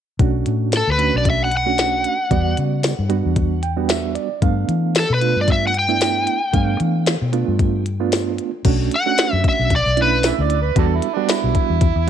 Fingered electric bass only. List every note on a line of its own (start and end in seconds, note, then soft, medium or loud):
0.19 0.42 B1 medium
0.47 0.82 A2 medium
0.87 1.10 D2 medium
1.14 2.04 B1 medium
2.31 2.53 E2 medium
2.58 2.93 C#3 medium
2.99 3.21 G2 medium
3.25 4.15 E2 medium
4.42 4.65 G2 medium
4.69 5.04 E3 medium
5.10 5.32 B2 medium
5.36 6.26 G2 medium
6.54 6.76 G2 medium
6.80 7.15 E3 medium
7.22 7.44 B2 medium
7.48 8.38 G2 medium
8.65 8.87 B1 medium
9.33 9.43 F#2 medium
9.59 9.82 B1 medium
9.86 10.31 B1 medium
10.39 10.71 D2 medium
10.76 10.99 E2 medium
11.44 11.54 B1 medium
11.70 11.92 E2 medium
11.96 12.10 E2 medium